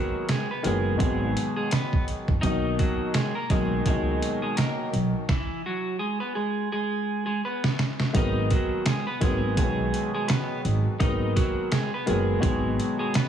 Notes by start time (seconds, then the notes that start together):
Already playing: D#3 F#3 G#3 A#3 B3 F#4
0.29 G#3 G#4, snare, closed hi-hat
0.51 B3 B4
0.63 F#1 D#3 F#3 G#3 A#3 B3 G#4, closed hi-hat
0.67 G#3
0.97 G#1 B2 D#3 F#3 G#3 B3 G#4, kick, closed hi-hat
1.37 closed hi-hat
1.56 G#3 G#4
1.71 B3 B4, snare, closed hi-hat
1.93 kick
2.08 closed hi-hat
2.28 F#1, kick
2.41 B1 B2 D#3 F#3 A#3 D#4 D#5, kick, closed hi-hat
2.46 D#4
2.79 F#3 F#4, kick, closed hi-hat
3.14 G#3 G#4, snare, closed hi-hat
3.35 A#3 A#4
3.50 B1 B2 D#3 F#3 G#3 A#3 D#4 G#4, kick, snare, closed hi-hat
3.86 C#2 B2 D#3 F#3 G#3 A#3 D#4 G#4, kick, closed hi-hat
4.22 closed hi-hat
4.42 G#3 G#4
4.57 A#3 A#4, snare, closed hi-hat
4.93 B1, closed hi-hat
5.29 E3 E4, kick, snare
5.66 F#3 F#4
5.99 G#3 G#4
6.20 B3 B4
6.35 G#3 G#4
6.72 G#3 G#4
7.26 G#3 G#4
7.45 B3 B4
7.64 snare
7.79 snare
8.00 snare
8.13 G#1 D#3 F#3 G#3 A#3 B3 D#4 D#5, kick, closed hi-hat
8.51 F#3 F#4, kick, closed hi-hat
8.86 G#3 G#4, snare, closed hi-hat
9.07 B3 B4
9.20 G#1 D#3 F#3 G#3 A#3 B3 G#4, kick, snare, closed hi-hat
9.57 B1 B2 D#3 F#3 G#3 B3 G#4, kick, closed hi-hat
9.94 closed hi-hat
10.14 G#3 G#4
10.28 B3 B4, snare, closed hi-hat
10.65 G#1, closed hi-hat
10.99 G#1 D#3 F#3 G#3 A#3 B3 D#4 D#5, kick, closed hi-hat
11.36 F#3 F#4, kick, closed hi-hat
11.72 G#3 G#4, snare, closed hi-hat
11.94 B3 B4
12.06 F#1 D#3 F#3 G#3 A#3 B3 G#4, closed hi-hat
12.10 G#3
12.40 G#1 B2 D#3 F#3 G#3 B3 G#4, kick, closed hi-hat
12.80 closed hi-hat
12.99 G#3 G#4
13.14 B3 B4, snare, closed hi-hat